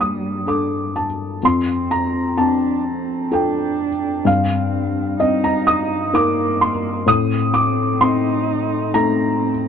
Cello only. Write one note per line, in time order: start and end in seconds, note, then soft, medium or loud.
0.00 0.96 G3 soft
1.42 2.38 C4 medium
2.37 2.86 D4 medium
2.84 3.34 C4 soft
3.32 4.29 D4 medium
4.28 5.20 C4 medium
5.21 6.15 D#4 medium
6.13 7.07 A#3 medium
7.10 8.05 C4 medium
8.03 8.95 D#4 medium
8.94 9.68 C4 medium